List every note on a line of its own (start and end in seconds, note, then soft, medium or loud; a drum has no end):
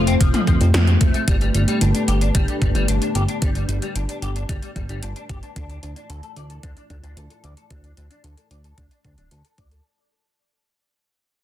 0.00 0.16 F1 medium
0.00 5.52 A3 medium
0.00 1.24 C4 medium
0.00 1.24 F4 medium
0.00 1.24 C5 medium
0.07 0.14 C4 medium
0.07 closed hi-hat soft
0.21 0.32 F1 medium
0.21 0.27 F3 medium
0.21 kick loud
0.21 closed hi-hat medium
0.34 0.41 F3 medium
0.34 closed hi-hat soft
0.34 mid tom medium
0.47 0.59 F2 medium
0.47 0.57 F3 medium
0.47 kick medium
0.47 closed hi-hat soft
0.61 0.72 F2 medium
0.61 0.65 C4 medium
0.61 closed hi-hat soft
0.74 0.97 F2 medium
0.74 0.81 F3 medium
0.74 snare loud
0.74 closed hi-hat medium
0.87 0.91 C4 medium
0.87 closed hi-hat soft
1.01 1.12 F1 medium
1.01 1.11 A3 medium
1.01 kick loud
1.01 closed hi-hat medium
1.14 1.21 A3 loud
1.14 closed hi-hat soft
1.28 1.50 G1 loud
1.28 1.34 G3 loud
1.28 5.52 D4 medium
1.28 5.52 G4 medium
1.28 5.52 B4 medium
1.28 kick loud
1.28 closed hi-hat medium
1.41 1.48 G3 medium
1.41 closed hi-hat soft
1.54 1.66 G1 medium
1.54 1.61 G3 medium
1.54 closed hi-hat medium
1.68 1.78 G3 medium
1.68 closed hi-hat soft
1.81 1.92 G1 loud
1.81 1.85 D4 medium
1.81 closed hi-hat medium
1.95 2.01 D4 medium
1.95 closed hi-hat soft
2.08 2.31 G1 medium
2.08 2.15 G4 medium
2.08 closed hi-hat medium
2.21 2.28 D4 medium
2.21 closed hi-hat soft
2.35 2.46 G1 medium
2.35 2.41 G3 medium
2.35 kick loud
2.35 closed hi-hat medium
2.48 2.55 G3 medium
2.48 closed hi-hat soft
2.62 2.73 G1 loud
2.62 2.68 G3 medium
2.62 kick medium
2.62 closed hi-hat soft
2.75 2.86 G1 loud
2.75 2.85 G3 medium
2.75 closed hi-hat soft
2.88 3.00 G1 medium
2.88 2.92 D4 medium
2.88 closed hi-hat medium
3.02 3.09 D4 medium
3.02 closed hi-hat soft
3.15 3.26 G1 medium
3.15 3.22 G4 medium
3.15 closed hi-hat medium
3.29 3.35 D4 medium
3.29 closed hi-hat soft
3.42 3.64 G1 loud
3.42 3.49 G3 medium
3.42 kick loud
3.42 closed hi-hat medium
3.55 3.62 G3 medium
3.55 closed hi-hat soft
3.69 3.80 G1 medium
3.69 3.75 G3 medium
3.69 closed hi-hat medium
3.82 3.92 G3 medium
3.82 closed hi-hat soft
3.95 4.07 G1 loud
3.95 4.00 D4 medium
3.95 closed hi-hat medium
4.09 4.16 D4 medium
4.09 closed hi-hat soft
4.22 4.45 G1 medium
4.22 4.29 G4 medium
4.22 closed hi-hat medium
4.36 4.42 D4 medium
4.36 closed hi-hat soft
4.49 4.60 G1 medium
4.49 4.56 G3 medium
4.49 kick loud
4.49 closed hi-hat medium
4.62 4.69 G3 medium
4.62 closed hi-hat soft
4.76 4.87 G1 loud
4.76 4.83 G3 medium
4.76 kick medium
4.76 closed hi-hat soft
4.89 5.00 G1 loud
4.89 4.99 G3 medium
4.89 closed hi-hat soft
5.03 5.14 G1 medium
5.03 5.07 D4 medium
5.03 closed hi-hat medium
5.16 5.23 D4 medium
5.16 closed hi-hat soft
5.29 5.41 G1 medium
5.29 5.36 G4 medium
5.29 kick medium
5.29 closed hi-hat medium
5.43 5.50 D4 medium
5.43 closed hi-hat soft
5.56 5.79 D2 loud
5.56 9.81 A3 medium
5.56 5.63 D4 medium
5.56 9.81 E4 medium
5.56 9.81 F4 medium
5.56 9.81 D5 medium
5.56 kick loud
5.56 closed hi-hat medium
5.70 5.76 D4 medium
5.70 closed hi-hat soft
5.83 5.94 D2 medium
5.83 5.90 D4 medium
5.83 closed hi-hat medium
5.96 6.06 D4 medium
5.96 closed hi-hat soft
6.10 6.21 D2 loud
6.10 6.14 A4 medium
6.10 closed hi-hat medium
6.23 6.30 A4 medium
6.23 closed hi-hat soft
6.36 6.59 D2 medium
6.36 6.43 D5 medium
6.36 closed hi-hat medium
6.50 6.57 A4 medium
6.50 closed hi-hat soft
6.63 6.75 D2 medium
6.63 6.70 D4 medium
6.63 kick medium
6.63 closed hi-hat medium
6.77 6.83 D4 medium
6.77 closed hi-hat soft
6.90 7.01 D2 loud
6.90 6.97 D4 medium
6.90 kick medium
6.90 closed hi-hat soft
7.03 7.15 D2 loud
7.03 7.13 D4 loud
7.03 closed hi-hat soft
7.17 7.28 D2 medium
7.17 7.21 A4 medium
7.17 closed hi-hat medium
7.30 7.37 A4 medium
7.30 closed hi-hat soft
7.44 7.55 D2 loud
7.44 7.50 D5 medium
7.44 closed hi-hat medium
7.57 7.64 A4 medium
7.57 closed hi-hat soft
7.70 7.93 D2 loud
7.70 7.77 D4 medium
7.70 kick loud
7.70 closed hi-hat medium
7.84 7.91 D4 medium
7.84 closed hi-hat soft
7.97 8.09 D2 medium
7.97 8.04 D4 medium
7.97 closed hi-hat medium
8.11 8.21 D4 medium
8.11 closed hi-hat soft
8.24 8.35 D2 loud
8.24 8.28 A4 medium
8.24 closed hi-hat medium
8.37 8.44 A4 medium
8.37 closed hi-hat soft
8.51 8.73 D2 medium
8.51 8.58 D5 medium
8.51 closed hi-hat medium
8.64 8.71 A4 medium
8.64 closed hi-hat soft
8.78 8.89 D2 medium
8.78 8.84 D4 medium
8.78 kick loud
8.78 closed hi-hat medium
8.91 8.98 D4 medium
8.91 closed hi-hat soft
9.04 9.16 D2 loud
9.04 9.11 D4 medium
9.04 kick medium
9.04 closed hi-hat soft
9.18 9.29 D1 medium
9.18 9.28 D4 medium
9.18 closed hi-hat soft
9.31 9.42 D2 loud
9.31 9.35 A4 medium
9.31 closed hi-hat medium
9.45 9.51 A4 medium
9.45 closed hi-hat soft
9.58 9.80 D2 medium
9.58 9.65 D5 medium
9.58 kick medium
9.58 closed hi-hat medium
9.71 9.78 A4 medium
9.71 closed hi-hat soft